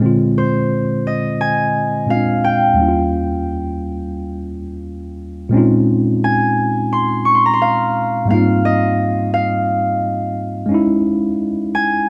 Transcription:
Already playing: A#2
0.00 D3 G#3 C4
0.06 F4
0.38 C5
1.07 D#5
1.41 G#5
2.07 A#2 G#3 C4 C#4 F4 F5
2.16 D4
2.44 G5
2.74 D#2 G3
2.78 A#3 C#4 E4
2.88 F4
5.49 A#2 G#3 C4
5.54 C#4 D#4 F4
6.24 G#5
6.93 C6
7.25 C#6
7.35 C6
7.46 A#5
7.54 C6
7.62 F5
8.26 G#2 G3 A#3
8.30 B3 D#4 F4 F5
8.37 C4
8.65 D#5
9.34 F5
10.66 G#3 C#4
10.71 D#4 E4
11.75 G#5

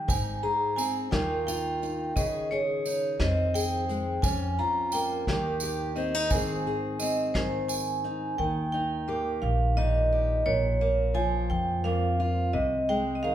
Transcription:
Already playing: D#3 G5
0.08 G#1 G#2 D#4 G#5, kick, closed hi-hat, tambourine
0.43 G#4 A#5, closed hi-hat
0.76 C4 G#5, closed hi-hat, tambourine
1.11 D#2 D#3 A#3 D#4 F4 G5, kick, snare, closed hi-hat
1.47 F4 G5, closed hi-hat, tambourine
1.82 D#4, closed hi-hat, tambourine
2.16 C#2 C#3 G#4 D#5, kick, closed hi-hat, tambourine
2.51 G#4 C#5, closed hi-hat
2.85 D#4, closed hi-hat, tambourine
3.19 F2 C4 D#5, kick, snare, closed hi-hat
3.54 G#4 G5, closed hi-hat, tambourine
3.89 G#3, closed hi-hat, tambourine
4.22 F2 C#4 G#5, kick, closed hi-hat, tambourine
4.58 F4 A#5, closed hi-hat
4.92 A#3 G5, closed hi-hat, tambourine
5.27 D#2 D#3 A#3 D#4 G4, kick, snare, closed hi-hat
5.60 G4, closed hi-hat, tambourine
5.96 C4 D#5, closed hi-hat, tambourine
6.15 D#4
6.30 G#1 G#2 D#3 C4 D#4 G#5, kick, closed hi-hat, tambourine
6.35 G#4
6.48 tambourine
6.66 G#4, closed hi-hat
7.00 C4 D#5, closed hi-hat, tambourine
7.34 G#2 D#3 C5, kick, snare, closed hi-hat
7.68 G#5, closed hi-hat, tambourine
8.04 D#4, closed hi-hat
8.38 D#2 D#3 G5
8.72 D#4 G5
9.08 A#3 G4
9.42 A#1 F5
9.77 A#2 D#4 D#5
10.12 G4
10.46 A#1 A#2 C#5
10.81 A#3
11.14 F3 F4 G#5
11.50 F2 G5
11.84 F2 A#3 F5
12.20 F4
12.53 C2 C3 D#5
12.89 G#3 G5
13.15 D#5
13.23 D#3 G#4 F5

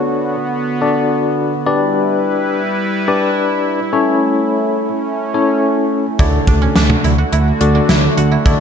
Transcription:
Already playing: D3 B3 D4 F#4 A4 C#5
0.82 D4 F#4 A4 D5
1.66 G3 D4 E4 G4 B4 D5
3.08 D4 G4 B4 D5
3.93 A3 C#4 E4 A4 C#5
5.34 C#4 E4 A4 C#5
6.19 D2 D3 D4 E4 F#4 A4 D5, kick, closed hi-hat
6.47 D2 D4, kick, closed hi-hat
6.62 C#4
6.76 D2 D4, snare, closed hi-hat
6.90 mid tom
7.04 D2 E4, closed hi-hat
7.18 F#4
7.32 D2 E4, closed hi-hat
7.61 D2 D4 F#4 A4 D5, closed hi-hat
7.75 D4
7.89 D2 E4, snare, closed hi-hat
8.17 D2 F#4, closed hi-hat
8.31 E4
8.46 D2 D4 E4 F#4 A4 D5, kick, closed hi-hat

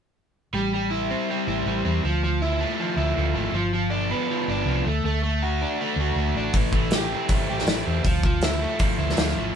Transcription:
0.53 A1 G3
0.74 G3
0.90 E4
1.10 C4
1.30 G3
1.47 A1 E4
1.66 A1 G3
1.85 E2 C4
2.04 D2 F3
2.24 F3
2.42 E4
2.60 A3
2.80 F3
2.96 D2 E4
3.17 D2 F3
3.34 G#1 A3
3.52 G1 F3
3.74 F3
3.90 D4
4.11 B3
4.30 F3
4.48 G1 D4
4.66 C2 F3
4.85 D2 A3
5.04 D2 A3
5.23 A3
5.43 F#4
5.62 D4
5.81 A3
5.96 D2
6.01 F#4
6.15 D2 A3
6.34 A1 D4
6.53 A1 E3, kick, open hi-hat
6.73 A3, kick
6.91 snare, open hi-hat
6.95 G4
7.13 C4
7.29 A3, kick, open hi-hat
7.50 A1 G4
7.59 snare
7.66 A1 A3, snare, open hi-hat
7.86 E2 C4
8.04 D2 F3, kick, open hi-hat
8.23 F3, kick
8.41 E4, snare, open hi-hat
8.62 A3
8.79 F3, kick, open hi-hat
8.99 D2 E4
9.10 snare
9.17 D2 F3, snare, open hi-hat
9.28 snare
9.36 G#1 A3

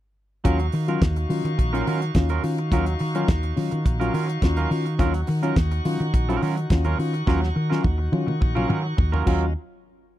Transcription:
0.44 D#2 F#3 C#4 D#4 F4 F#4 A#4 F5 C#6, kick, closed hi-hat
0.59 muted clean electric guitar stroke, closed hi-hat
0.72 D#3, muted clean electric guitar stroke, open hi-hat
0.88 F#3 C#4 F4 A#4, closed hi-hat
1.02 D#2 D#3, muted clean electric guitar stroke, kick, snare, closed hi-hat
1.16 muted clean electric guitar stroke, closed hi-hat
1.29 D#3 F#3 C#4 F4, open hi-hat
1.45 D#3 C#4 F4, muted clean electric guitar stroke, closed hi-hat
1.58 A#1 D#3, muted clean electric guitar stroke, kick, closed hi-hat
1.73 F#3 C#4 F4 A#4, closed hi-hat
1.87 D#3 F#3 C#4 F4 A#4, open hi-hat
2.02 muted clean electric guitar stroke, closed hi-hat
2.15 D#2 C#4 F4, muted clean electric guitar stroke, kick, snare, closed hi-hat
2.29 D#3 F#3 C#4 F4 A#4, closed hi-hat
2.43 D#3 C#4 F4, muted clean electric guitar stroke, open hi-hat
2.58 muted clean electric guitar stroke, closed hi-hat
2.72 D#2 F#3 C#4 F4 A#4, kick, closed hi-hat
2.86 muted clean electric guitar stroke, closed hi-hat
2.99 D#3, muted clean electric guitar stroke, open hi-hat
3.15 F#3 C#4 F4 A#4, closed hi-hat
3.28 D#2 D#3, muted clean electric guitar stroke, kick, snare, closed hi-hat
3.43 muted clean electric guitar stroke, closed hi-hat
3.56 D#3 F#3 C#4 F4, open hi-hat
3.71 D#3 C#4 F4, muted clean electric guitar stroke, closed hi-hat
3.85 A#1 D#3, muted clean electric guitar stroke, kick, closed hi-hat
4.00 F#3 C#4 F4 A#4, closed hi-hat
4.13 D#3 F#3 C#4 F4 A#4, open hi-hat
4.28 muted clean electric guitar stroke, closed hi-hat
4.42 D#2 C#4 F4, muted clean electric guitar stroke, kick, snare, closed hi-hat
4.57 D#3 F#3 C#4 F4 A#4, closed hi-hat
4.71 D#3 C#4 F4, open hi-hat
4.85 muted clean electric guitar stroke, closed hi-hat
4.99 D#2 F#3 C#4 F4 A#4 F#5, kick, closed hi-hat
5.14 muted clean electric guitar stroke, closed hi-hat
5.27 D#3, muted clean electric guitar stroke, open hi-hat
5.43 F#3 C#4 F4 A#4, closed hi-hat
5.56 D#2 D#3, muted clean electric guitar stroke, kick, snare, closed hi-hat
5.71 muted clean electric guitar stroke, closed hi-hat
5.85 D#3 F#3 C#4 F4, open hi-hat
6.00 D#3 C#4 F4, muted clean electric guitar stroke, closed hi-hat
6.14 A#1 D#3, muted clean electric guitar stroke, kick, closed hi-hat
6.29 F#3 C#4 F4 A#4, closed hi-hat
6.42 D#3 F#3 C#4 F4 A#4, open hi-hat
6.56 muted clean electric guitar stroke, closed hi-hat
6.70 D#2 C#4 F4, muted clean electric guitar stroke, kick, snare, closed hi-hat
6.84 D#3 F#3 C#4 F4 A#4, closed hi-hat
6.98 D#3 C#4 F4, muted clean electric guitar stroke, open hi-hat
7.13 muted clean electric guitar stroke, closed hi-hat
7.27 D#2 F#3 C#4 F4 A#4, kick, snare
7.42 muted clean electric guitar stroke, snare
7.55 D#3, muted clean electric guitar stroke
7.70 F#3 C#4 F4 A#4, snare
7.83 D#2 D#3, muted clean electric guitar stroke, kick, high tom
7.98 muted clean electric guitar stroke
8.12 D#3 F#3 C#4 F4, high tom
8.26 D#3 C#4 F4, muted clean electric guitar stroke, mid tom
8.40 A#1 D#3, muted clean electric guitar stroke, kick
8.55 F#3 C#4 F4 A#4, mid tom
8.68 D#3 F#3 C#4 F4 A#4, mid tom
8.84 muted clean electric guitar stroke
8.97 D#2, muted clean electric guitar stroke, kick, mid tom
9.12 F#3 C#4 F4 A#4, floor tom
9.26 D#2 F#3 C#4 F4 F#4 A#4 D#5 F5, kick, crash

